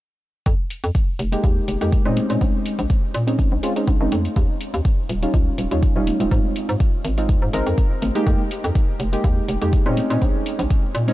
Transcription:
0.46 F2, kick, closed hi-hat
0.70 open hi-hat
0.84 F2, closed hi-hat
0.95 kick, closed hi-hat
1.19 F1, open hi-hat
1.32 G#3 A#3 D#4 G4, closed hi-hat
1.44 D#2, kick, closed hi-hat
1.68 F1, open hi-hat
1.81 F2 G#3 A#3 D#4 G4, closed hi-hat
1.92 kick, closed hi-hat
2.05 A#2 G#3 C4 C#4 D#4
2.17 open hi-hat, high conga
2.29 A#2 G#3 C4 C#4 D#4, closed hi-hat
2.41 A#1, kick, closed hi-hat
2.66 open hi-hat
2.79 A#1, closed hi-hat
2.90 kick, closed hi-hat
3.14 A#2, open hi-hat
3.27 G#3 C4 C#4 D#4, closed hi-hat
3.39 G#1, kick, closed hi-hat
3.52 A#1
3.63 G#3 C4 C#4 F4, open hi-hat
3.76 G#3 C4 C#4 D#4, closed hi-hat
3.88 A#1, kick, closed hi-hat
4.00 G#1 G#3 C4 C#4 D#4
4.12 F2, open hi-hat, high conga
4.25 closed hi-hat
4.36 D#2, kick, closed hi-hat
4.61 open hi-hat
4.74 D#2, closed hi-hat
4.85 kick, closed hi-hat
5.09 D#1, open hi-hat
5.22 G3 C#4 D#4 F4, closed hi-hat
5.34 C#2, kick, closed hi-hat
5.58 D#1, open hi-hat
5.71 D#2 G3 C#4 D#4 F4, closed hi-hat
5.83 kick, closed hi-hat
5.96 D#1 G3 C#4 D#4 F4
6.07 open hi-hat, high conga
6.20 D#1 G#3 C4 D#4 F4, closed hi-hat
6.31 G#2, kick, closed hi-hat
6.56 open hi-hat
6.69 G#2, closed hi-hat
6.80 kick, closed hi-hat
7.05 G#1, open hi-hat
7.17 G#3 C4 D#4 F4, closed hi-hat
7.29 F2, kick, closed hi-hat
7.42 G#2
7.53 G#1 G#3 C4 D#4 A#4, open hi-hat
7.67 F2, closed hi-hat
7.78 kick, closed hi-hat
8.02 G#1, open hi-hat, high conga
8.15 G#3 A#3 D#4 G4, closed hi-hat
8.27 F2, kick, closed hi-hat
8.51 open hi-hat
8.64 F2, closed hi-hat
8.75 kick, closed hi-hat
9.00 F1, open hi-hat
9.12 G#3 A#3 D#4 G4, closed hi-hat
9.24 D#2, kick, closed hi-hat
9.48 F1, open hi-hat
9.61 F2 G#3 A#3 D#4 G4, closed hi-hat
9.73 kick, closed hi-hat
9.86 A#2 G#3 C4 C#4 D#4
9.97 open hi-hat, high conga
10.10 A#2 G#3 C4 C#4 D#4, closed hi-hat
10.22 A#1, kick, closed hi-hat
10.46 open hi-hat
10.59 A#1, closed hi-hat
10.70 kick, closed hi-hat
10.95 A#2, open hi-hat
11.08 G#3 C4 C#4 D#4, closed hi-hat

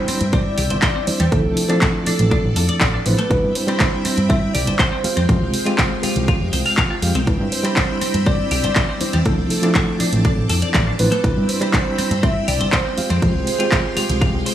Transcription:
Already playing: G3 C4 D4 E4 C5 E5 G5 B5, impact
0.08 C4, muted picked electric bass stroke, open hi-hat
0.21 G2, closed hi-hat
0.32 C4 D5, kick, closed hi-hat
0.58 C2 G4, open hi-hat
0.70 G1 C5, closed hi-hat
0.82 C5, kick, clap, closed hi-hat
0.95 C4
1.07 G3 C4 D4 E4 C5 D5, muted picked electric bass stroke, open hi-hat
1.20 E2 G3, closed hi-hat
1.31 D2 F3 C4 D4 E4 A4 D5, kick, closed hi-hat
1.45 C2
1.57 open hi-hat
1.68 F3 C4 D4 E4 A4, closed hi-hat
1.81 E4, kick, clap, closed hi-hat
2.06 D4 A4, muted picked electric bass stroke, open hi-hat
2.19 A1, closed hi-hat
2.31 D4, kick, closed hi-hat
2.44 A1
2.56 F2 A4, open hi-hat
2.69 D5, muted picked electric bass stroke, closed hi-hat
2.81 A1 D5, kick, clap, closed hi-hat
2.94 D4
3.05 A1 F3 C4 D4 E4 B4 C5, open hi-hat
3.19 A3, closed hi-hat
3.30 C2 G3 C4 D4 E4 B4 E5 G5 B5, kick, closed hi-hat
3.43 G2
3.55 C5, open hi-hat
3.67 G3 C4 D4 E4 B5, closed hi-hat
3.80 D4, kick, clap, closed hi-hat
4.05 C4, muted picked electric bass stroke, open hi-hat
4.18 G2, closed hi-hat
4.29 C4 E5, kick, closed hi-hat
4.54 C2 G4 D5, open hi-hat
4.67 G1 C5, closed hi-hat
4.79 C5, kick, clap, closed hi-hat
4.92 C4
5.04 G#3 C4 F4 G4 F5 G5, muted picked electric bass stroke, open hi-hat
5.17 F2 C4, closed hi-hat
5.28 F2 G#3 C4 F4 G4 C5, kick, closed hi-hat
5.42 C2
5.54 open hi-hat
5.66 G#3 C4 F4 G4 C5, closed hi-hat
5.78 G4, kick, clap, closed hi-hat
6.03 F4 G4, muted picked electric bass stroke, open hi-hat
6.16 C2, closed hi-hat
6.28 F4, kick, closed hi-hat
6.41 F1
6.53 C2 C5, open hi-hat
6.66 F5, open hi-hat
6.77 F5, kick, clap, closed hi-hat
6.90 F4
7.02 F2 G#3 C4 F4 G4 F5, open hi-hat
7.15 C2 C4, closed hi-hat
7.27 C2 G3 C4 D4 E4 B4 B5 E6, kick, closed hi-hat
7.40 G2
7.52 C5, open hi-hat
7.64 G3 C4 D4 E4 B5, closed hi-hat
7.76 D4, kick, clap, closed hi-hat
8.01 C4, muted picked electric bass stroke, open hi-hat
8.14 G2, closed hi-hat
8.26 C4 D5, kick, closed hi-hat
8.51 C2 G4, open hi-hat
8.64 G1 C5, closed hi-hat
8.76 C5, kick, clap, closed hi-hat
8.89 C4
9.00 G3 C4 D4 E4 C5 D5, muted picked electric bass stroke, open hi-hat
9.13 E2 G3, closed hi-hat
9.25 D2 F3 C4 D4 E4 A4 A5 D6, kick, closed hi-hat
9.38 C2
9.50 A4, open hi-hat
9.62 F3 C4 D4 E4 A4, closed hi-hat
9.75 E4, kick, clap, closed hi-hat
10.00 D4, muted picked electric bass stroke, open hi-hat
10.13 A1, closed hi-hat
10.25 D4, kick, closed hi-hat
10.37 A1
10.49 F2 A4, open hi-hat
10.62 D5, muted picked electric bass stroke, closed hi-hat
10.74 A1 D5, kick, clap, closed hi-hat
10.87 D4
10.99 A1 F3 C4 D4 E4 B4 C5, open hi-hat
11.12 A3, closed hi-hat
11.23 C2 G3 C4 D4 E4 B4 G5 B5 E6, kick, closed hi-hat
11.37 G2
11.49 C5, open hi-hat
11.61 G3 C4 D4 E4 B5, closed hi-hat
11.73 D4, kick, clap, closed hi-hat
11.98 C4, muted picked electric bass stroke, open hi-hat
12.11 G2, closed hi-hat
12.23 C4 E5, kick, closed hi-hat
12.48 C2 G4 D5, open hi-hat
12.61 G1 C5, closed hi-hat
12.72 C5, kick, clap, closed hi-hat
12.86 C4
12.97 G#3 C4 F4 G4 F5 C6, muted picked electric bass stroke, open hi-hat
13.10 F2 C4, closed hi-hat
13.22 F2 G#3 C4 F4 G4 C5, kick, closed hi-hat
13.35 C2
13.47 open hi-hat
13.59 G#3 C4 F4 G4 C5, closed hi-hat
13.72 G4, kick, clap, closed hi-hat
13.97 F4 G4, muted picked electric bass stroke, open hi-hat
14.10 C2, closed hi-hat
14.21 F1 F4, kick, closed hi-hat
14.34 C2
14.46 C5, open hi-hat

